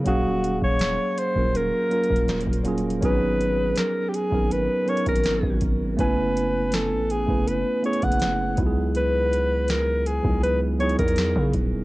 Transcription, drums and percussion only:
0.06 kick loud
0.06 closed hi-hat medium
0.44 closed hi-hat medium
0.62 kick loud
0.79 snare loud
0.79 closed hi-hat medium
1.18 closed hi-hat medium
1.36 kick loud
1.55 closed hi-hat medium
1.91 closed hi-hat soft
2.04 closed hi-hat soft
2.10 kick loud
2.16 closed hi-hat soft
2.28 snare loud
2.28 closed hi-hat medium
2.41 closed hi-hat medium
2.47 kick medium
2.53 closed hi-hat medium
2.65 closed hi-hat medium
2.65 open hi-hat medium
2.78 closed hi-hat medium
2.90 closed hi-hat medium
3.02 kick loud
3.02 closed hi-hat medium
3.41 closed hi-hat medium
3.76 snare loud
3.76 closed hi-hat medium
4.14 closed hi-hat medium
4.32 kick loud
4.51 closed hi-hat medium
4.88 closed hi-hat soft
4.97 closed hi-hat soft
5.06 kick loud
5.06 closed hi-hat medium
5.15 closed hi-hat medium
5.23 snare loud
5.23 closed hi-hat medium
5.43 kick medium
5.61 kick medium
5.61 closed hi-hat medium
5.99 kick loud
5.99 closed hi-hat medium
6.37 closed hi-hat medium
6.72 snare loud
6.72 closed hi-hat medium
7.10 closed hi-hat medium
7.28 kick loud
7.48 closed hi-hat medium
7.84 closed hi-hat soft
7.93 closed hi-hat soft
8.02 kick loud
8.02 closed hi-hat medium
8.12 closed hi-hat medium
8.20 snare loud
8.20 closed hi-hat medium
8.57 kick loud
8.57 closed hi-hat medium
8.95 closed hi-hat medium
9.33 closed hi-hat medium
9.68 snare loud
9.68 closed hi-hat medium
10.06 closed hi-hat medium
10.24 kick loud
10.44 closed hi-hat medium
10.80 closed hi-hat soft
10.89 closed hi-hat soft
10.99 kick loud
10.99 closed hi-hat medium
11.08 closed hi-hat medium
11.16 snare loud
11.16 closed hi-hat medium
11.35 kick medium
11.53 kick loud
11.53 closed hi-hat medium

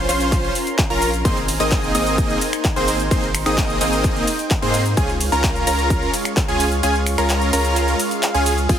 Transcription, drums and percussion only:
0.09 open hi-hat loud
0.09 cabasa medium
0.21 closed hi-hat medium
0.21 cabasa soft
0.32 kick loud
0.32 clap soft
0.32 closed hi-hat medium
0.32 cabasa soft
0.44 cabasa soft
0.55 open hi-hat loud
0.55 cabasa medium
0.67 closed hi-hat medium
0.67 cabasa soft
0.78 kick loud
0.78 clap loud
0.78 closed hi-hat medium
0.78 cabasa soft
0.90 closed hi-hat soft
0.90 cabasa soft
1.02 open hi-hat loud
1.02 cabasa medium
1.14 closed hi-hat soft
1.14 cabasa soft
1.25 kick loud
1.25 closed hi-hat medium
1.25 cabasa soft
1.37 cabasa soft
1.48 open hi-hat loud
1.48 ride medium
1.48 cabasa medium
1.60 closed hi-hat medium
1.60 cabasa soft
1.71 kick loud
1.71 clap loud
1.71 closed hi-hat medium
1.71 cabasa soft
1.83 cabasa soft
1.95 open hi-hat loud
1.95 ride medium
1.95 cabasa medium
2.07 closed hi-hat medium
2.07 cabasa soft
2.18 kick loud
2.18 closed hi-hat medium
2.18 cabasa soft
2.30 cabasa soft
2.41 open hi-hat loud
2.41 ride medium
2.41 cabasa medium
2.53 finger snap medium
2.53 closed hi-hat medium
2.53 cabasa soft
2.65 kick loud
2.65 clap loud
2.65 closed hi-hat medium
2.65 cabasa soft
2.76 closed hi-hat soft
2.76 cabasa soft
2.88 open hi-hat loud
2.88 ride medium
2.88 cabasa medium
3.00 closed hi-hat medium
3.00 cabasa soft
3.11 kick loud
3.11 closed hi-hat medium
3.11 cabasa soft
3.23 cabasa soft
3.35 finger snap medium
3.35 open hi-hat loud
3.35 ride medium
3.35 cabasa medium
3.46 finger snap medium
3.46 closed hi-hat medium
3.46 cabasa soft
3.58 kick loud
3.58 clap loud
3.58 closed hi-hat medium
3.58 cabasa soft
3.70 cabasa soft
3.81 open hi-hat loud
3.81 ride medium
3.81 cabasa medium
3.93 closed hi-hat medium
3.93 cabasa soft
4.04 kick loud
4.04 clap soft
4.04 closed hi-hat medium
4.04 cabasa soft
4.16 cabasa soft
4.27 open hi-hat loud
4.27 ride medium
4.27 cabasa medium
4.39 closed hi-hat medium
4.39 cabasa soft
4.51 kick loud
4.51 clap loud
4.51 closed hi-hat medium
4.51 cabasa soft
4.62 closed hi-hat soft
4.62 cabasa soft
4.74 open hi-hat loud
4.74 ride medium
4.74 cabasa medium
4.86 closed hi-hat medium
4.86 cabasa soft
4.97 kick loud
4.97 closed hi-hat medium
4.97 cabasa soft
5.09 cabasa soft
5.21 open hi-hat loud
5.21 ride medium
5.21 cabasa medium
5.32 closed hi-hat medium
5.32 cabasa soft
5.44 kick loud
5.44 clap loud
5.44 closed hi-hat medium
5.44 cabasa soft
5.56 cabasa soft
5.67 open hi-hat loud
5.67 ride medium
5.67 cabasa medium
5.79 closed hi-hat medium
5.79 cabasa soft
5.90 kick loud
5.90 closed hi-hat medium
5.90 cabasa soft
6.02 cabasa soft
6.14 open hi-hat loud
6.14 ride medium
6.14 cabasa medium
6.25 finger snap medium
6.25 closed hi-hat medium
6.25 cabasa soft
6.37 kick loud
6.37 clap loud
6.37 closed hi-hat medium
6.37 cabasa soft
6.48 closed hi-hat soft
6.48 cabasa soft
6.60 open hi-hat loud
6.60 ride medium
6.60 cabasa medium
6.72 closed hi-hat medium
6.72 cabasa soft
6.83 closed hi-hat medium
6.83 cabasa soft
6.95 cabasa soft
7.07 finger snap medium
7.07 open hi-hat loud
7.07 ride medium
7.07 cabasa medium
7.18 finger snap medium
7.18 closed hi-hat medium
7.18 cabasa soft
7.30 clap loud
7.30 closed hi-hat medium
7.30 cabasa soft
7.41 closed hi-hat soft
7.41 cabasa soft
7.53 open hi-hat loud
7.53 ride medium
7.53 cabasa medium
7.65 closed hi-hat medium
7.65 cabasa soft
7.76 clap soft
7.76 closed hi-hat medium
7.76 cabasa soft
7.88 closed hi-hat soft
7.88 cabasa soft
8.00 open hi-hat loud
8.00 ride medium
8.00 cabasa medium
8.11 closed hi-hat medium
8.11 cabasa soft
8.23 clap loud
8.23 closed hi-hat medium
8.23 cabasa soft
8.35 closed hi-hat soft
8.35 cabasa soft
8.46 open hi-hat loud
8.46 ride medium
8.46 cabasa medium
8.58 closed hi-hat medium
8.58 cabasa soft
8.69 kick loud
8.69 closed hi-hat medium
8.69 crash medium
8.69 cabasa soft

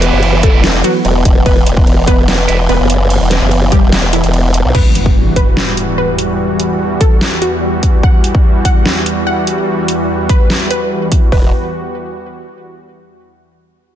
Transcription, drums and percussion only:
0.02 closed hi-hat medium
0.23 ride soft
0.43 kick loud
0.43 closed hi-hat medium
0.64 snare loud
0.64 ride medium
0.84 closed hi-hat medium
1.05 ride soft
1.25 kick medium
1.25 closed hi-hat medium
1.46 kick loud
1.46 ride medium
1.66 closed hi-hat medium
1.77 kick loud
1.87 ride soft
2.08 kick medium
2.08 closed hi-hat medium
2.28 snare loud
2.28 ride medium
2.49 closed hi-hat medium
2.69 ride soft
2.90 closed hi-hat medium
3.10 ride medium
3.31 snare medium
3.31 closed hi-hat medium
3.51 ride soft
3.72 kick loud
3.72 closed hi-hat medium
3.92 snare loud
3.92 ride medium
4.13 closed hi-hat medium
4.24 closed hi-hat soft
4.34 ride soft
4.54 closed hi-hat medium
4.75 kick loud
4.75 crash loud
4.95 closed hi-hat medium
5.06 kick loud
5.36 kick medium
5.36 closed hi-hat medium
5.57 snare loud
5.77 closed hi-hat medium
6.18 closed hi-hat medium
6.60 closed hi-hat medium
7.01 kick loud
7.01 closed hi-hat medium
7.21 snare loud
7.42 closed hi-hat medium
7.83 kick medium
7.83 closed hi-hat medium
8.03 kick loud
8.24 closed hi-hat medium
8.35 kick loud
8.65 kick medium
8.65 closed hi-hat medium
8.86 snare loud
9.06 closed hi-hat medium
9.47 closed hi-hat medium
9.88 closed hi-hat medium
10.29 kick loud
10.29 closed hi-hat medium
10.50 snare loud
10.71 closed hi-hat medium
11.12 kick medium
11.12 closed hi-hat medium
11.32 kick loud
11.32 open hi-hat medium

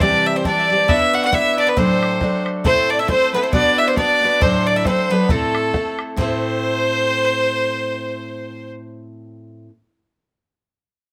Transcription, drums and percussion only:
0.00 bodhran medium
0.45 bodhran medium
0.89 bodhran medium
1.33 bodhran medium
1.77 bodhran medium
2.03 bodhran medium
2.21 bodhran medium
2.46 bodhran medium
2.65 bodhran medium
3.09 bodhran medium
3.53 bodhran medium
3.97 bodhran medium
4.42 bodhran medium
4.85 bodhran medium
5.29 bodhran medium
5.55 bodhran medium
5.74 bodhran medium
5.99 bodhran medium
6.18 bodhran medium

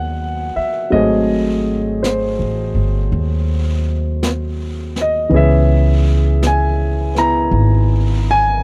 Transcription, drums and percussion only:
0.94 brush sweep soft
2.04 brush sweep soft
2.04 snare soft
2.04 hi-hat pedal soft
3.13 brush sweep soft
4.23 brush sweep soft
4.23 snare soft
4.23 hi-hat pedal medium
4.96 snare soft
5.33 brush sweep soft
6.43 brush sweep soft
6.43 snare soft
6.43 hi-hat pedal soft
7.16 snare soft
7.53 brush sweep soft

